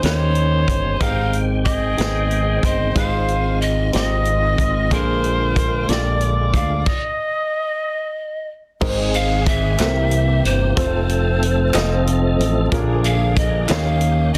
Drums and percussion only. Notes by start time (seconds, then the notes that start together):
0.03 snare, closed hi-hat
0.35 closed hi-hat
0.68 kick, closed hi-hat
1.01 kick, closed hi-hat
1.33 closed hi-hat
1.66 kick, closed hi-hat
1.98 snare, closed hi-hat
2.31 closed hi-hat
2.63 kick, closed hi-hat
2.96 kick, closed hi-hat
3.28 closed hi-hat
3.62 closed hi-hat
3.93 snare, closed hi-hat
4.25 closed hi-hat
4.58 kick, closed hi-hat
4.91 kick, closed hi-hat
5.24 closed hi-hat
5.56 kick, closed hi-hat
5.89 snare, closed hi-hat
6.21 closed hi-hat
6.54 kick, closed hi-hat
6.86 kick, crash
8.81 kick, crash
9.14 closed hi-hat
9.46 kick, closed hi-hat
9.78 snare, clap, closed hi-hat
10.11 closed hi-hat
10.45 closed hi-hat
10.77 kick, closed hi-hat
11.09 closed hi-hat
11.43 closed hi-hat
11.74 snare, clap, closed hi-hat
12.07 closed hi-hat
12.41 closed hi-hat
12.72 kick, closed hi-hat
13.04 closed hi-hat
13.37 kick, closed hi-hat
13.68 snare, clap, closed hi-hat
14.01 closed hi-hat
14.35 closed hi-hat